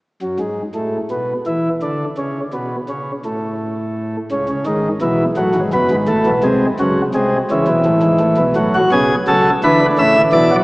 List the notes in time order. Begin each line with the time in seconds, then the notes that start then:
0.22 F#2
0.40 G#2
0.75 A2
1.11 B2
1.47 E3
1.83 D3
2.18 C#3
2.54 B2
2.89 C#3
3.25 A2
4.32 C#2 C#3
4.49 C#3
4.66 G#1 G#2 D#3
5.02 B1 B2 E3
5.37 A1 A2 F#3
5.55 G#1 G#2
5.73 F#1 F#2 B3
5.91 G#1 G#2
6.08 A1 A2 A3
6.26 B1 B2
6.44 C2 C3 G#3
6.80 C#2 C#3 F#3
7.15 C2 C3 G#3
7.51 C#2 C#3 E3
7.68 B1 B2
7.85 A1 A2
8.03 G#1 G#2
8.20 A1 A2
8.38 B1 B2
8.56 A1 A2 F#3
8.75 F#4
8.92 B1 B2 C#3 G#4
9.28 C#2 C#3 F#3 A4
9.64 D2 D3 E3 B4
9.81 D3
9.99 A1 A2 C#3 E5
10.16 D3
10.33 B1 B2 E3 D5
10.51 F#3